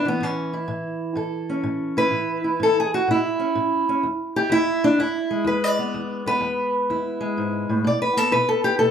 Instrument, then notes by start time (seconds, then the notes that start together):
steel-string acoustic guitar
Already playing: E2
0.05 E3 B3
0.20 A2 C#4
0.53 E4
0.68 A2
1.15 A2 A4
1.50 C#4
1.63 A2
1.97 E4 B4
2.11 A2
2.44 E4
2.60 A2 A4
2.80 G#4
2.94 F#4
3.08 A2 E4
3.39 C#4
3.55 A2
3.89 C#4
4.03 E2
4.36 E4 G4
4.50 E2 E4
4.84 D4
4.99 E2 E4
5.31 G#3
5.44 E2 B4
5.64 D5
5.79 B3
5.94 E2
6.26 B3 B4
6.41 E2
6.90 E2 E4
7.21 G#3
7.37 G#2
7.69 A2
7.84 B2 D5
8.02 B4
8.17 B3 A4
8.32 B2 B4
8.49 A4
8.64 G4
8.79 B2 A4